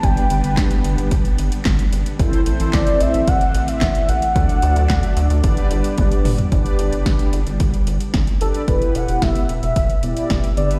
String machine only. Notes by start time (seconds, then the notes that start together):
Already playing: G3 B3 D4
2.19 E3 A3 C4
4.35 F#3 D4
5.44 G3 B3
6.52 G3 B3 D4